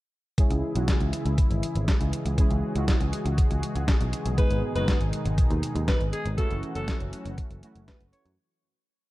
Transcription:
0.38 analog synth pad C#3 E3 G#3 E4 G#4, analog polysynth C#3 G#3 C#4 E4 G#4, kick, closed hi-hat
0.50 picked electric bass C#2, closed hi-hat
0.75 picked electric bass B1, analog polysynth C#3 G#3 C#4 E4 F#4, closed hi-hat
0.88 kick, snare, closed hi-hat
1.00 picked electric bass C#2, closed hi-hat
1.13 closed hi-hat
1.25 picked electric bass C#2, closed hi-hat
1.38 kick, closed hi-hat
1.50 picked electric bass G#1, closed hi-hat
1.63 closed hi-hat
1.75 picked electric bass G#1, closed hi-hat
1.88 kick, snare, closed hi-hat
2.01 picked electric bass C#2, closed hi-hat
2.13 closed hi-hat
2.26 picked electric bass C#2, closed hi-hat
2.38 analog polysynth C#3 G#3 C#4 E4 G#4, analog synth pad F#4, kick, closed hi-hat
2.51 picked electric bass C#2, closed hi-hat
2.76 picked electric bass C#2, analog polysynth C#3 G#3 C#4 E4 F#4, closed hi-hat
2.88 kick, snare, closed hi-hat
3.00 picked electric bass C#2, closed hi-hat
3.13 closed hi-hat
3.25 picked electric bass C#2, closed hi-hat
3.38 kick, closed hi-hat
3.51 picked electric bass C#2, closed hi-hat
3.63 closed hi-hat
3.76 picked electric bass C#2, closed hi-hat
3.88 kick, snare, closed hi-hat
4.01 picked electric bass B1, closed hi-hat
4.13 closed hi-hat
4.26 picked electric bass B1, closed hi-hat
4.38 analog polysynth G#2 G#3 B3 D#4 G#4, analog synth pad B2 D#3 D#4, alto saxophone B4, kick, closed hi-hat
4.51 picked electric bass G#1, closed hi-hat
4.75 picked electric bass F#1, analog polysynth G#2 G#3 B3 D#4 F#4, alto saxophone B4, closed hi-hat
4.88 kick, snare, closed hi-hat
5.01 picked electric bass G#1, closed hi-hat
5.13 closed hi-hat
5.25 picked electric bass G#1, closed hi-hat
5.38 kick, closed hi-hat
5.50 picked electric bass D#2, closed hi-hat
5.63 closed hi-hat
5.75 picked electric bass D#2, closed hi-hat
5.88 alto saxophone B4, kick, snare, closed hi-hat
6.01 picked electric bass G#1, closed hi-hat
6.13 alto saxophone G#4, closed hi-hat
6.26 picked electric bass G#1, closed hi-hat
6.38 analog synth pad E3 F#3 A3 C#4 F#4, analog polysynth A3 C#4 E4 F#4, alto saxophone A4, kick, closed hi-hat
6.50 picked electric bass F#1, closed hi-hat
6.63 closed hi-hat
6.75 picked electric bass F#1, analog polysynth A3 C#4 E4 F#4, alto saxophone A4, closed hi-hat
6.88 kick, snare, closed hi-hat
7.00 picked electric bass F#1, closed hi-hat
7.13 closed hi-hat
7.25 picked electric bass F#1, closed hi-hat
7.38 kick, closed hi-hat
7.50 picked electric bass F#1, closed hi-hat
7.63 analog polysynth A3 C#4 E4 F#4, closed hi-hat
7.75 picked electric bass F#1, closed hi-hat
7.88 alto saxophone B4, kick, snare, closed hi-hat
8.00 picked electric bass F#1, closed hi-hat
8.13 alto saxophone C#5, closed hi-hat
8.25 picked electric bass F#2, closed hi-hat

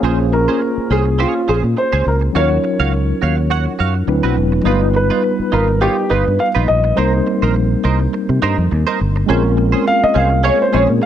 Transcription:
Already playing: tine electric piano F5
0.01 fingered electric bass A#1, tine electric piano A#3 C#4 F4 G#4, clean electric guitar C#4 G#4 C5
0.06 tine electric piano C5
0.20 muted clean electric guitar stroke
0.33 vibraphone C#4, grand piano A#4, muted clean electric guitar stroke
0.48 clean electric guitar C#4 G#4 C5
0.61 muted clean electric guitar stroke
0.78 muted fingered electric bass stroke
0.90 fingered electric bass C2, clean electric guitar C#4 G#4 C5, grand piano G#4
1.06 muted clean electric guitar stroke
1.19 clean electric guitar C#4 G#4 C#5, grand piano F4
1.35 muted clean electric guitar stroke
1.48 fingered electric bass A#1, clean electric guitar C#4 G#4 C5, grand piano G#4
1.63 fingered electric bass A#2, muted clean electric guitar stroke
1.77 grand piano C5, muted clean electric guitar stroke
1.93 fingered electric bass C#2, clean electric guitar C#4 G#4 C5
2.06 fingered electric bass C#2, grand piano A#4, muted clean electric guitar stroke
2.21 muted clean electric guitar stroke
2.33 fingered electric bass D#2, tine electric piano F#3 C#4 D#4 F4, clean electric guitar F#4 C#5 F5, grand piano C#5
2.37 tine electric piano A#4
2.51 muted clean electric guitar stroke
2.64 muted clean electric guitar stroke
2.80 fingered electric bass C#2, clean electric guitar F#4 C#5 F5
2.93 muted clean electric guitar stroke
3.22 fingered electric bass D#2, clean electric guitar F#4 C#5 F5
3.37 muted clean electric guitar stroke
3.50 clean electric guitar F#4 C#5 F#5
3.66 muted clean electric guitar stroke
3.79 fingered electric bass F#2, clean electric guitar F#4 C#5 F5
3.94 muted clean electric guitar stroke
4.07 fingered electric bass D2, tine electric piano F#3 C4 D4 E4 B4, vibraphone A3, muted clean electric guitar stroke
4.23 fingered electric bass B1, clean electric guitar C4 F#4 B4
4.37 fingered electric bass E1, muted clean electric guitar stroke
4.52 muted clean electric guitar stroke
4.63 fingered electric bass G1, tine electric piano G3 B3 D#4 F4, clean electric guitar D#4 F4 B4
4.68 tine electric piano B4
4.81 muted clean electric guitar stroke
4.94 grand piano B4, muted clean electric guitar stroke
5.10 clean electric guitar D#4 F4 B4
5.23 muted clean electric guitar stroke
5.40 muted fingered electric bass stroke
5.52 fingered electric bass G#1, clean electric guitar D#4 F4 B4, grand piano A#4
5.68 muted clean electric guitar stroke
5.81 clean electric guitar D#4 F4 C#5, grand piano G4
5.97 muted clean electric guitar stroke
6.10 fingered electric bass G1, clean electric guitar D#4 F4 B4, grand piano B4
6.25 fingered electric bass G2, muted clean electric guitar stroke
6.39 grand piano F5, muted clean electric guitar stroke
6.55 fingered electric bass A#1, clean electric guitar D#4 F4 B4
6.68 fingered electric bass A#1, grand piano D#5, muted clean electric guitar stroke
6.84 muted clean electric guitar stroke
6.95 fingered electric bass C2, tine electric piano G3 A#3 C4 D#4, clean electric guitar D#4 A#4 C5, grand piano C5
6.99 tine electric piano A#4
7.13 muted clean electric guitar stroke
7.27 muted clean electric guitar stroke
7.42 fingered electric bass A#1, clean electric guitar D#4 A#4 C5
7.56 muted clean electric guitar stroke
7.84 fingered electric bass C2, clean electric guitar D#4 A#4 C5
8.00 muted clean electric guitar stroke
8.13 muted clean electric guitar stroke
8.29 fingered electric bass C3, muted clean electric guitar stroke
8.42 fingered electric bass G2, clean electric guitar D#4 A#4 C5
8.58 fingered electric bass F2, muted clean electric guitar stroke
8.71 fingered electric bass D#2, muted clean electric guitar stroke
8.87 clean electric guitar D#4 A#4 C5
9.00 fingered electric bass G1, muted clean electric guitar stroke
9.16 muted clean electric guitar stroke
9.26 fingered electric bass A#1, tine electric piano G#3 C4 C#4 F4, tonewheel organ G#3 A#3, clean electric guitar C#4 G#4 C5
9.31 tine electric piano A#4
9.44 muted clean electric guitar stroke
9.57 muted clean electric guitar stroke
9.72 clean electric guitar C#4 G#4 C5
9.86 grand piano F5, muted clean electric guitar stroke
10.04 grand piano D#5, muted fingered electric bass stroke
10.14 fingered electric bass C2, clean electric guitar C#4 G#4 C5, grand piano F5
10.30 muted clean electric guitar stroke
10.44 clean electric guitar C#4 G#4 C#5, grand piano C#5
10.60 grand piano C5, muted clean electric guitar stroke
10.73 fingered electric bass A#1, tine electric piano G#3 C4 C#4 F4 G#4, clean electric guitar C#4 G#4 C5, grand piano C#5
10.88 fingered electric bass A#2, muted clean electric guitar stroke
11.02 muted clean electric guitar stroke

